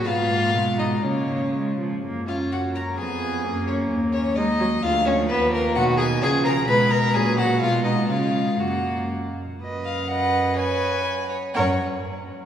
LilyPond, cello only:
\new Staff \with { instrumentName = "Cello" } { \clef bass \time 2/4 \key fis \major \tempo 4 = 126 gis,4 b,4 | cis4. r8 | fis,2 | f,4 fis,4 |
dis,2 | d,4 dis,4 | b,4 cis4 | b,4 ais,4 |
b,4 cis4 | fis,4. r8 | fis,2~ | fis,4. r8 |
fis,8 r4. | }